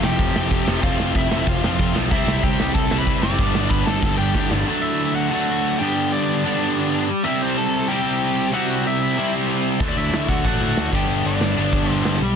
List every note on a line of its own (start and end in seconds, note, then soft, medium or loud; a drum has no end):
0.00 0.15 F1 medium
0.00 0.34 F2 medium
0.00 0.35 C3 medium
0.00 0.35 F3 medium
0.00 0.34 A3 loud
0.00 0.34 C4 loud
0.00 0.79 G4 medium
0.00 snare loud
0.04 0.86 G5 medium
0.19 0.31 F1 loud
0.19 kick loud
0.19 crash medium
0.35 0.47 F1 loud
0.35 0.50 F2 medium
0.35 0.51 C3 medium
0.35 0.51 F3 medium
0.35 0.50 A3 medium
0.35 0.54 C4 medium
0.35 snare loud
0.51 0.80 F2 medium
0.51 0.63 F2 loud
0.51 0.82 C3 medium
0.51 0.82 F3 medium
0.51 0.83 A3 medium
0.51 0.85 C4 medium
0.51 kick loud
0.51 crash medium
0.67 0.79 F1 loud
0.67 0.83 C3 medium
0.67 0.82 F3 medium
0.67 snare loud
0.71 0.83 F2 medium
0.82 0.95 F1 loud
0.82 1.62 F2 loud
0.82 1.62 C3 loud
0.82 1.62 F3 loud
0.82 1.63 A3 loud
0.82 1.13 F4 medium
0.82 1.16 F5 medium
0.82 kick loud
0.82 crash medium
0.86 1.61 C4 loud
0.99 1.11 F1 medium
0.99 snare loud
1.15 1.27 F1 medium
1.15 1.46 E4 medium
1.15 1.48 E5 medium
1.15 kick loud
1.15 crash medium
1.31 1.43 F1 medium
1.31 snare loud
1.47 1.59 F1 loud
1.47 1.63 F4 medium
1.47 1.63 F5 loud
1.47 kick loud
1.47 crash medium
1.63 1.75 F1 loud
1.63 1.78 F2 medium
1.63 1.79 C3 medium
1.63 1.79 F3 medium
1.63 1.79 A3 medium
1.63 1.78 C4 medium
1.63 1.95 F4 medium
1.63 1.94 F5 loud
1.63 snare loud
1.79 2.10 F2 medium
1.79 1.91 F2 loud
1.79 2.10 C3 medium
1.79 2.11 F3 medium
1.79 2.12 A3 medium
1.79 2.12 C4 medium
1.79 kick loud
1.79 crash medium
1.95 2.07 B1 loud
1.95 2.12 F2 medium
1.95 2.11 C3 medium
1.95 2.10 F3 loud
1.95 snare loud
2.11 2.23 C2 loud
2.11 2.90 C3 loud
2.11 2.91 G3 medium
2.11 2.91 C4 loud
2.11 2.41 E4 medium
2.11 2.89 E4 loud
2.11 2.45 E5 medium
2.11 kick loud
2.11 crash medium
2.27 2.39 C2 loud
2.27 snare loud
2.43 2.55 C2 loud
2.43 2.73 G4 medium
2.43 2.74 G5 medium
2.43 kick loud
2.43 crash medium
2.60 2.71 C2 loud
2.60 snare loud
2.74 2.87 C2 medium
2.74 2.97 A4 medium
2.74 2.97 A5 loud
2.74 kick loud
2.74 crash medium
2.91 3.03 C2 loud
2.91 3.05 C3 medium
2.91 3.06 G3 medium
2.91 3.07 C4 medium
2.91 3.06 E4 medium
2.91 snare loud
2.98 3.22 B4 medium
2.98 3.23 B5 loud
3.06 3.38 C3 medium
3.06 3.19 C3 loud
3.06 3.38 G3 medium
3.06 3.39 C4 medium
3.06 3.39 E4 medium
3.06 kick loud
3.06 crash medium
3.23 3.35 F#1 loud
3.23 3.40 C3 medium
3.23 3.39 G3 medium
3.23 3.38 C4 loud
3.23 3.69 D5 medium
3.23 3.70 D6 loud
3.23 snare loud
3.38 3.51 G1 loud
3.38 4.18 G2 medium
3.38 4.18 D3 medium
3.38 4.19 G3 loud
3.38 4.19 B3 loud
3.38 4.18 D4 loud
3.38 kick loud
3.38 crash medium
3.54 3.66 G1 loud
3.54 snare loud
3.70 3.82 G1 medium
3.70 3.86 B4 medium
3.70 3.85 B5 loud
3.70 kick loud
3.70 crash medium
3.86 3.98 G1 medium
3.86 4.17 A4 medium
3.86 4.17 A5 loud
3.86 snare loud
4.03 4.15 G1 loud
4.03 kick loud
4.03 snare medium
4.18 4.31 G1 loud
4.18 4.35 G3 medium
4.18 4.35 B3 medium
4.18 4.34 D4 medium
4.18 4.49 G4 medium
4.18 4.48 G5 medium
4.22 4.33 G2 medium
4.22 4.34 D3 medium
4.34 4.66 G2 medium
4.34 4.46 G2 loud
4.34 4.65 D3 medium
4.34 4.67 G3 medium
4.34 4.67 B3 medium
4.34 4.68 D4 medium
4.34 kick loud
4.34 snare loud
4.50 4.63 G1 medium
4.50 4.67 G2 medium
4.50 4.65 D3 medium
4.50 4.66 G3 loud
4.50 snare loud
4.66 5.30 D3 medium
4.66 5.31 F#3 medium
4.66 5.31 A3 loud
4.66 5.32 D4 medium
4.82 5.13 E4 medium
4.82 5.15 E5 medium
5.15 5.30 F#4 medium
5.15 5.29 F#5 medium
5.30 5.78 D3 medium
5.30 5.79 F#3 medium
5.30 5.80 A3 medium
5.30 5.76 F#4 medium
5.30 5.79 F#5 medium
5.34 5.80 D4 medium
5.79 6.43 G2 medium
5.79 6.44 D3 medium
5.79 6.46 G3 medium
5.79 6.44 B3 medium
5.79 6.10 G4 medium
5.79 6.12 G5 loud
5.83 6.43 D4 loud
6.12 7.04 D4 medium
6.12 7.04 D5 medium
6.44 7.09 G2 medium
6.44 7.09 D3 medium
6.44 7.24 G3 medium
6.44 7.08 B3 medium
6.44 7.07 D4 medium
7.23 7.87 C3 medium
7.23 7.88 G3 medium
7.23 7.88 C4 loud
7.23 7.39 E4 medium
7.23 7.89 E4 loud
7.23 7.41 E5 loud
7.42 7.56 C4 medium
7.42 7.58 C5 medium
7.57 7.87 A4 medium
7.57 7.90 A5 loud
7.88 8.51 C3 medium
7.88 8.52 G3 medium
7.88 8.53 C4 medium
7.88 8.53 E4 medium
7.88 8.49 G4 medium
7.88 8.49 G5 loud
8.52 9.15 C3 medium
8.52 9.16 G3 medium
8.52 9.17 C4 loud
8.52 9.17 E4 loud
8.52 8.83 F#4 medium
8.52 8.83 F#5 medium
8.87 9.01 E4 medium
8.87 9.01 E5 loud
9.02 9.32 E4 medium
9.02 9.31 E5 medium
9.16 9.79 C3 medium
9.16 9.80 G3 medium
9.16 9.81 C4 medium
9.20 9.81 E4 medium
9.80 9.94 D2 medium
9.80 10.43 D3 medium
9.80 10.45 F#3 medium
9.80 10.45 A3 medium
9.80 10.46 D4 medium
9.80 kick loud
9.80 crash medium
9.89 9.96 D5 medium
9.96 10.10 D2 medium
9.96 10.27 E4 medium
9.96 10.27 E5 medium
10.12 10.26 D2 medium
10.12 snare loud
10.12 crash medium
10.28 10.42 D2 medium
10.28 10.45 F#4 medium
10.28 10.45 F#5 medium
10.28 kick medium
10.44 10.58 A1 medium
10.44 10.92 D3 medium
10.44 10.93 F#3 medium
10.44 10.93 A3 medium
10.44 10.94 D4 medium
10.44 10.91 F#4 medium
10.44 10.90 F#5 medium
10.44 kick loud
10.44 crash medium
10.61 10.74 A2 loud
10.76 10.90 D2 loud
10.76 snare loud
10.76 crash medium
10.93 11.06 G1 medium
10.93 11.56 G2 loud
10.93 11.57 D3 loud
10.93 11.58 G3 medium
10.93 11.56 B3 medium
10.93 11.24 G4 medium
10.93 11.27 G5 medium
10.93 kick loud
10.93 crash loud
10.97 11.55 D4 loud
11.08 11.22 G1 loud
11.08 crash medium
11.24 11.38 G1 medium
11.24 12.18 D4 medium
11.24 11.91 D5 medium
11.40 11.54 G1 medium
11.40 snare loud
11.40 crash medium
11.57 11.71 G1 medium
11.57 12.22 G2 medium
11.57 12.21 D3 medium
11.57 12.36 G3 medium
11.57 12.21 B3 medium
11.57 12.20 D4 medium
11.72 11.86 G1 medium
11.72 kick loud
11.72 crash medium
11.88 12.02 G1 loud
11.88 12.18 C5 medium
12.05 12.18 G1 medium
12.05 snare loud
12.05 crash medium
12.21 12.35 B1 loud